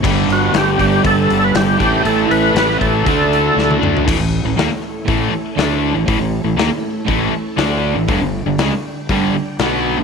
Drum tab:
CC |x---------------|----------------|x---------------|----------------|
HH |--o-o-o-o-o-o-o-|o-o-o-o-o-o-----|----o---o---o---|o---o---o---o---|
SD |----o-------o---|----oo------o---|----o-------o---|----o-------o---|
T1 |----------------|-------------o--|----------------|----------------|
T2 |----------------|--------------o-|----------------|----------------|
FT |----------------|---------------o|----------------|----------------|
BD |o-----o-o-----o-|------o-o-------|o-------o-------|o-------o-------|

CC |----------------|
HH |o---o---o---o---|
SD |----o-------o---|
T1 |----------------|
T2 |----------------|
FT |----------------|
BD |o-------o-------|